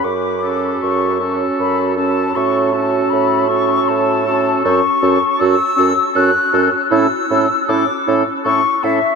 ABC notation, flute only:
X:1
M:3/4
L:1/8
Q:1/4=79
K:F#m
V:1 name="Flute"
d'2 c' z b a | c' a b c' a2 | c'2 e'2 f'2 | e'2 d' z c' e |]